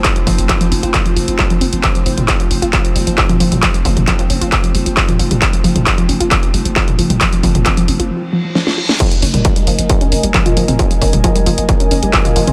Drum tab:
CC |----------------|----------------|----------------|----------------|
HH |xxoxxxoxxxox-xox|xxoxxxoxxxox-xox|xxoxxxoxxxox-xox|xxoxxxoxxxox-xox|
CP |x---x---x---x---|x---x---x---x---|x---x---x---x---|x---x---x---x---|
SD |----------------|----------------|----------------|----------------|
T2 |----------------|---o---------o-o|---o---------o-o|---o---------o-o|
BD |o-o-o---o---o---|o---o---o---o---|o-o-o---o---o---|o---o---o---o---|

CC |----------------|x---------------|----------------|
HH |xxoxxxox--------|xxoxxxoxxxoxxxox|xxoxxxoxxxoxxxox|
CP |x---x-----------|------------x---|------------x---|
SD |------------oo-o|----------------|----------------|
T2 |---o------------|---o---------o-o|---o---------o-o|
BD |o-o-o-----------|o---o---o---o---|o-o-o---o---o---|